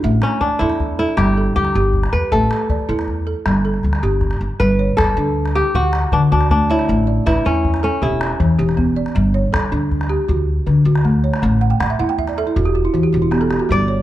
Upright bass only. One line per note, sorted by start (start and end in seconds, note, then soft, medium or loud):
0.04 0.18 A1 loud
0.61 1.04 E2 medium
1.18 1.47 G1 medium
1.56 1.70 D2 medium
1.75 2.04 G1 loud
2.13 2.20 E2 medium
2.33 2.47 A1 medium
2.89 3.33 E2 medium
3.46 3.75 G1 medium
3.84 3.99 D2 medium
4.03 4.32 G1 medium
4.41 4.48 G1 medium
4.60 4.89 G1 medium
4.98 5.13 G1 medium
5.17 5.60 D2 medium
5.75 6.04 D2 medium
6.12 6.27 D3 medium
6.32 6.75 D2 medium
6.89 7.18 A1 medium
7.27 7.41 A1 medium
7.46 7.89 E2 medium
8.03 8.31 E1 medium
8.40 8.54 E2 medium
8.59 9.02 E1 medium
9.16 9.44 G1 loud
9.53 9.68 G1 medium
9.72 10.15 D2 medium
10.29 10.58 D2 medium
10.67 10.81 D3 medium
10.85 11.29 D2 medium
11.43 11.72 A1 loud
11.81 11.95 A1 medium
12.00 12.43 E2 medium
12.56 12.85 E1 medium
12.95 13.09 E2 medium
13.14 13.57 E1 medium
13.70 13.99 G1 medium